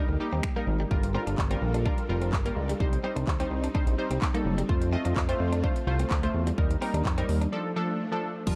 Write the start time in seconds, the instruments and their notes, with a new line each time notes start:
Already playing: analog polysynth G3 D#4 A#4, string machine A#3 D#4 G4
0.09 analog synth bass D2, muted clean electric guitar stroke
0.20 analog polysynth G3 D#4 G4
0.33 analog synth bass D#2, clean electric guitar C4
0.43 finger snap, kick
0.56 analog polysynth G3 D#4 A#4, clean electric guitar A#3
0.67 analog synth bass G#1, muted clean electric guitar stroke
0.80 clean electric guitar G3
0.91 analog synth bass G1, analog polysynth G3 F4 A#4, string machine G3 D4 F4 A4 A#4, kick
1.03 muted clean electric guitar stroke, closed hi-hat
1.14 analog polysynth G3 F4 A#4, clean electric guitar C4
1.27 analog synth bass G1, clean electric guitar D4, closed hi-hat
1.38 analog synth bass G1, kick, clap
1.50 analog polysynth G3 F4 A#4, clean electric guitar C4, closed hi-hat
1.62 analog synth bass A#1, muted clean electric guitar stroke
1.74 clean electric guitar D4, closed hi-hat
1.85 analog polysynth G3 F4 A#4, clean electric guitar D4, kick
1.98 muted clean electric guitar stroke, closed hi-hat
2.09 analog synth bass F1, analog polysynth G3 F4 A#4
2.22 clean electric guitar C4, closed hi-hat
2.33 analog synth bass G1, kick, clap
2.45 analog polysynth G3 F4 A#4, clean electric guitar A#3, closed hi-hat
2.56 analog synth bass C#2, muted clean electric guitar stroke
2.69 clean electric guitar G3, closed hi-hat
2.80 analog synth bass C2, analog polysynth G3 D#4 C5, string machine C4 D#4, kick
2.93 muted clean electric guitar stroke, closed hi-hat
3.03 analog polysynth G3 D#4 C5, clean electric guitar C4
3.16 analog synth bass C2, clean electric guitar D4, closed hi-hat
3.27 analog synth bass D2, kick, clap
3.39 analog polysynth G3 D#4 C5, clean electric guitar C4, closed hi-hat
3.51 analog synth bass C2, muted clean electric guitar stroke
3.64 clean electric guitar D4, closed hi-hat
3.74 analog polysynth G3 D#4 C5, clean electric guitar D4, kick
3.87 analog synth bass A#1, muted clean electric guitar stroke, closed hi-hat
3.98 analog polysynth G3 D#4 C5
4.10 analog synth bass C2, clean electric guitar C4, closed hi-hat
4.22 kick, clap
4.34 analog polysynth G3 D#4 A4, clean electric guitar A#3, closed hi-hat
4.45 analog synth bass F#1, muted clean electric guitar stroke
4.58 clean electric guitar G3, closed hi-hat
4.69 analog synth bass F2, analog polysynth A3 F4 C5, string machine A3 F4, kick
4.82 muted clean electric guitar stroke, closed hi-hat
4.93 analog polysynth A3 F4 D#5, clean electric guitar C4
5.05 analog synth bass F2, clean electric guitar D4, closed hi-hat
5.16 analog synth bass F2, kick, clap
5.29 analog polysynth A3 F4 C5, clean electric guitar C4, closed hi-hat
5.40 analog synth bass F2, muted clean electric guitar stroke
5.53 clean electric guitar D4, closed hi-hat
5.63 analog polysynth A3 F4 C5, clean electric guitar D4, kick
5.76 muted clean electric guitar stroke, closed hi-hat
5.87 analog synth bass C2, analog polysynth A3 F4 C5
5.99 clean electric guitar C4, closed hi-hat
6.10 analog synth bass D2, kick, clap
6.23 analog polysynth A3 F4 C5, clean electric guitar A3, closed hi-hat
6.34 analog synth bass E2, muted clean electric guitar stroke
6.47 clean electric guitar G3, closed hi-hat
6.58 analog synth bass D#2, analog polysynth G3 D#4 A#4, string machine G3 A#3 D#4, kick
6.71 muted clean electric guitar stroke, closed hi-hat
6.81 analog polysynth G3 D#4 A#4, clean electric guitar C4, open hi-hat
6.94 analog synth bass D#2, clean electric guitar D4, closed hi-hat
7.05 analog synth bass F2, kick, clap
7.18 analog polysynth G3 D#4 A#4, clean electric guitar C4, closed hi-hat
7.29 analog synth bass D#2, muted clean electric guitar stroke, open hi-hat
7.41 clean electric guitar D4, closed hi-hat
7.52 analog polysynth F3 D4 A4, string machine F3 A3 D4
7.76 analog polysynth F3 D4 A4
8.12 analog polysynth F3 D4 A4
8.47 analog synth bass G1, synth pluck F3, analog polysynth G3 F4 A#4, string machine G3 D4 F4 A#4 A5, kick, closed hi-hat, crash